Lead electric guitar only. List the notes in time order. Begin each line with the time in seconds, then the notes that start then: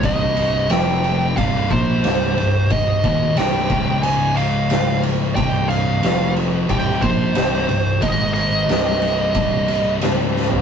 0.05 D#5
0.71 G5
1.37 F5
1.71 C5
2.72 D#5
3.38 G5
4.03 G#5
4.37 F5
5.35 G5
5.69 F5
6.70 G5
7.02 C5
8.02 D#5
8.34 D#5